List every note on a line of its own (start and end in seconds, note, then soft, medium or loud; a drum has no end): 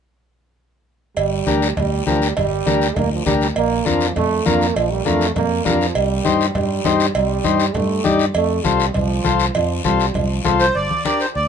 1.17 1.41 G1 medium
1.17 1.73 G3 medium
1.17 cowbell loud
1.17 high conga soft
1.17 long guiro medium
1.46 1.71 D2 medium
1.46 1.68 D4 medium
1.46 1.68 G4 medium
1.46 1.68 A#4 medium
1.46 high conga medium
1.46 short guiro medium
1.62 short guiro medium
1.77 2.01 D2 medium
1.77 2.05 G3 loud
1.77 cowbell medium
1.77 high conga soft
1.77 low conga medium
1.77 long guiro medium
2.06 2.31 D2 medium
2.06 2.23 F3 medium
2.06 2.28 D4 medium
2.06 2.28 G4 medium
2.06 2.28 A#4 medium
2.06 high conga medium
2.06 short guiro medium
2.22 2.36 G3 medium
2.22 short guiro medium
2.37 2.61 G1 medium
2.37 2.98 G3 loud
2.37 cowbell loud
2.37 high conga soft
2.37 low conga medium
2.37 long guiro medium
2.66 2.91 D2 medium
2.66 2.87 D4 medium
2.66 2.88 G4 medium
2.66 2.88 A#4 medium
2.66 high conga medium
2.66 short guiro medium
2.82 short guiro medium
2.96 3.21 D2 medium
2.96 3.12 A#3 loud
2.96 cowbell medium
2.96 high conga soft
2.96 low conga medium
2.96 long guiro medium
3.12 3.26 F3 medium
3.26 3.51 D2 medium
3.26 3.33 G3 loud
3.26 3.47 D4 medium
3.26 3.47 G4 medium
3.26 3.48 A#4 medium
3.26 high conga medium
3.26 low conga medium
3.26 short guiro medium
3.41 3.48 G3 medium
3.41 short guiro medium
3.56 3.80 A#1 medium
3.56 3.88 A#3 loud
3.56 cowbell loud
3.56 high conga soft
3.56 long guiro medium
3.86 4.10 F2 medium
3.86 4.15 F3 medium
3.86 4.07 D4 medium
3.86 4.07 F4 medium
3.86 4.07 A#4 medium
3.86 high conga medium
3.86 short guiro medium
4.01 short guiro medium
4.16 4.40 F2 medium
4.16 4.48 A3 loud
4.16 cowbell medium
4.16 high conga soft
4.16 low conga medium
4.16 long guiro medium
4.45 4.70 F2 medium
4.45 4.77 A#3 loud
4.45 4.67 D4 medium
4.45 4.67 F4 medium
4.45 4.67 A#4 medium
4.45 high conga medium
4.45 short guiro medium
4.61 short guiro medium
4.76 5.00 A#1 medium
4.76 4.92 F3 medium
4.76 cowbell loud
4.76 high conga soft
4.76 long guiro medium
4.91 5.07 G3 medium
5.05 5.30 F2 medium
5.05 5.35 A3 loud
5.05 5.27 D4 medium
5.05 5.27 F4 medium
5.05 5.27 A#4 medium
5.05 high conga medium
5.05 short guiro medium
5.21 short guiro medium
5.35 5.60 F2 medium
5.35 5.67 A#3 loud
5.35 cowbell medium
5.35 high conga soft
5.35 low conga medium
5.35 long guiro medium
5.65 5.90 F2 medium
5.65 5.82 G3 medium
5.65 5.86 D4 medium
5.65 5.87 F4 medium
5.65 5.87 A#4 medium
5.65 high conga medium
5.65 low conga medium
5.65 low timbale medium
5.65 short guiro medium
5.81 5.97 F3 medium
5.81 short guiro medium
5.95 6.20 C2 medium
5.95 6.55 G3 loud
5.95 cowbell loud
5.95 high conga soft
5.95 long guiro medium
6.24 6.49 G2 medium
6.24 6.46 D#4 medium
6.24 6.46 G4 medium
6.24 6.46 C5 medium
6.24 high conga medium
6.24 short guiro medium
6.41 short guiro medium
6.55 6.79 G2 medium
6.55 7.11 G3 loud
6.55 cowbell medium
6.55 high conga soft
6.55 low conga medium
6.55 long guiro medium
6.85 7.09 G2 medium
6.85 7.06 D#4 medium
6.85 7.06 G4 medium
6.85 7.06 C5 medium
6.85 high conga medium
6.85 low timbale medium
6.85 short guiro medium
7.00 short guiro medium
7.15 7.39 C2 medium
7.15 7.76 G3 medium
7.15 cowbell loud
7.15 high conga soft
7.15 long guiro medium
7.44 7.69 G2 medium
7.44 7.66 D#4 medium
7.44 7.66 G4 medium
7.44 7.66 C5 medium
7.44 high conga medium
7.44 short guiro medium
7.60 short guiro medium
7.74 7.99 G2 medium
7.74 8.07 A3 loud
7.74 cowbell medium
7.74 high conga soft
7.74 low conga medium
7.74 long guiro medium
8.04 8.29 G2 medium
8.04 8.20 G3 medium
8.04 8.26 D#4 medium
8.04 8.26 G4 medium
8.04 8.26 D5 loud
8.04 high conga medium
8.04 short guiro medium
8.19 short guiro medium
8.34 8.59 F2 medium
8.34 8.66 A3 loud
8.34 cowbell loud
8.34 high conga soft
8.34 long guiro medium
8.64 8.89 C2 medium
8.64 8.94 G3 medium
8.64 8.86 F4 medium
8.64 8.86 A4 medium
8.64 8.86 C5 medium
8.64 high conga medium
8.64 short guiro medium
8.80 short guiro medium
8.94 9.19 C2 loud
8.94 9.51 F3 medium
8.94 cowbell medium
8.94 high conga soft
8.94 low conga medium
8.94 long guiro medium
9.24 9.49 C2 medium
9.24 9.46 F4 medium
9.24 9.46 A4 medium
9.24 9.46 C5 medium
9.24 high conga medium
9.24 short guiro medium
9.39 short guiro medium
9.54 9.79 F2 medium
9.54 9.82 F3 medium
9.54 cowbell loud
9.54 high conga soft
9.54 low conga medium
9.54 long guiro medium
9.84 10.09 C2 loud
9.84 10.16 G3 medium
9.84 10.06 F4 medium
9.84 10.06 A4 medium
9.84 10.06 C5 medium
9.84 high conga medium
9.84 short guiro medium
10.00 short guiro medium
10.14 10.39 C2 medium
10.14 10.44 F3 medium
10.14 cowbell medium
10.14 high conga soft
10.14 low conga medium
10.14 long guiro medium
10.44 10.69 C2 medium
10.44 10.73 F3 medium
10.44 10.66 F4 medium
10.44 10.66 A4 medium
10.44 10.66 C5 medium
10.44 high conga medium
10.44 low timbale medium
10.44 short guiro medium
10.60 10.76 C5 medium
10.60 short guiro medium
10.75 10.87 G1 medium
10.75 11.03 D5 medium
10.75 high conga soft
10.75 long guiro medium
10.90 high conga medium
11.05 11.26 D4 medium
11.05 11.26 G4 medium
11.05 11.27 A#4 medium
11.05 11.21 D5 medium
11.05 high conga medium
11.05 short guiro medium
11.20 11.27 C5 medium
11.20 short guiro medium
11.35 11.48 D2 loud
11.35 11.48 D5 medium
11.35 high conga soft
11.35 long guiro medium